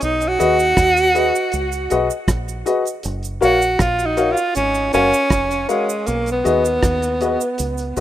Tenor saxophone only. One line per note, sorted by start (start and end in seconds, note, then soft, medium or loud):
0.03 0.29 D#4 loud
0.28 2.17 F#4 loud
3.44 3.82 F#4 loud
3.81 4.07 F4 loud
4.06 4.33 D#4 medium
4.31 4.55 F4 medium
4.56 4.91 C#4 loud
4.94 5.65 C#4 loud
5.69 6.08 G#3 medium
6.07 6.31 A#3 medium
6.32 8.00 B3 medium